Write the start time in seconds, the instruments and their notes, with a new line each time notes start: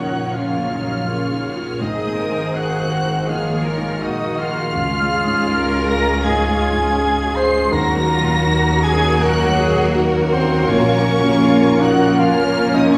Already playing: double bass section A#1, felt piano A#2 F3 A#3 D#4 F4, harp A#2 C#3, french horn section C#3 A#4, viola section D#3 C#4, cello section D#4, clarinet F#4, violin section A#4 C#5, flute section F#5, oboe F#5
0.00 violin section F#6
0.08 harp A#3, felt piano F4
0.32 viola section F3, felt piano F3, cello section F4, clarinet F4, flute section F5, oboe F5, violin section F6
0.57 felt piano A#3, harp A#3
0.69 viola section F#3, cello section D#4
0.81 felt piano F3
1.06 viola section C#3, harp A#3, felt piano F4, violin section F4 C#5, cello section F4
1.31 felt piano D#4
1.44 violin section F#4
1.56 harp A#3, felt piano F4
1.80 double bass section G#1, harp G#2, felt piano G#2, french horn section G#3 A#4, viola section G#3 C4, clarinet D#4, violin section G#4 D#5 D#6, cello section G#4, oboe D#5, flute section D#5
2.05 harp A#3, felt piano A#3
2.17 cello section A#4, violin section C5
2.30 harp D#3, felt piano D#3
2.54 viola section D#3, harp A#3, clarinet F#4, cello section G#4, felt piano G#4, oboe F#5, flute section F#5, violin section F#6
2.79 harp D#3, felt piano F#4
2.92 cello section F#4
3.04 felt piano G#4
3.28 harp D#3, felt piano D#3, viola section F3 A#3, clarinet F4, cello section G#4, violin section G#4 C#5 F6, flute section F5, oboe F5
3.52 harp A#3, felt piano A#3
3.64 viola section D#3, cello section A#4
3.77 harp D#3, felt piano D#3
4.01 double bass section A#1, viola section D#3 A#3, harp A#3, clarinet D#4, cello section F#4, violin section F#4 D#5 D#6, felt piano G#4, flute section D#5, oboe D#5
4.26 harp D#3, felt piano F#4
4.39 clarinet F4, flute section F5, oboe F5, violin section F6
4.51 harp A#3, felt piano G#4
4.75 felt piano C#2, double bass section C#2, harp C#3, viola section G#3 C#4, french horn section G#3 G#4, cello section F4, violin section F4 G#4
5.00 felt piano G#3, harp G#3
5.14 cello section G#4
5.25 felt piano G#2, harp C#4
5.50 harp G#3, felt piano G#4, cello section A#4
5.75 felt piano F#4
5.86 clarinet A#4, oboe A#5, flute section A#5, violin section A#6
6.00 harp G#3
6.24 felt piano G#2, harp C#4, cello section G#4, clarinet G#4, oboe G#5, flute section G#5, violin section G#6
6.49 harp G#3, felt piano G#3
6.61 cello section F4
6.73 felt piano G#2, harp C#4
6.98 harp G#3, cello section G#4, felt piano G#4
7.22 harp C#4, felt piano F#4
7.36 clarinet C5, oboe C6, flute section C6, violin section C7
7.47 harp G#3, felt piano G#4
7.72 felt piano D#2, double bass section D#2, harp D#3, french horn section F#3 A#3, viola section F#3 A#3, cello section F#4, violin section F#4 A#4 A#6, clarinet A#4, flute section A#5, oboe A#5
7.96 felt piano F#3, harp D#4
8.08 cello section F4
8.20 felt piano A#2, harp F#3
8.45 harp D#4, felt piano D#4, cello section F#4
8.70 harp F#3, felt piano C#4
8.82 clarinet G#4, cello section G#4, flute section G#5, oboe G#5, violin section G#6
8.96 felt piano D#4, harp D#4
9.21 felt piano A#2, harp F#3, clarinet F#4, cello section A#4, oboe F#5, flute section F#5, violin section F#6
9.46 felt piano F#3, harp D#4
9.58 cello section G#4
9.71 felt piano A#2, harp F#3
9.95 harp D#4, felt piano D#4, cello section F#4
10.19 harp F#3, felt piano C#4
10.32 clarinet C4, flute section C5, oboe C5, violin section C6
10.43 felt piano D#4
10.68 double bass section A#1, felt piano A#2, harp A#2, timpani A#2, viola section A#3, clarinet C#4, french horn section C#4, cello section F4, oboe C#5, flute section C#5, violin section C#6
10.93 felt piano A#3, harp A#3
11.05 cello section C#4
11.18 harp C#3, felt piano F3
11.42 harp A#3, cello section F4, felt piano F4, violin section F4
11.68 felt piano D#4
11.80 cello section D#4, clarinet F#4, oboe F#5, flute section F#5, violin section F#6
11.94 felt piano F4
12.18 harp F3, felt piano F3, cello section C#4, clarinet F4, oboe F5, flute section F5, violin section F6
12.43 harp A#3, felt piano A#3
12.68 harp F3, felt piano F3
12.74 clarinet D#4, oboe D#5, flute section D#5, violin section D#6
12.92 clarinet C#4, felt piano F4, flute section C#5, oboe C#5, violin section C#6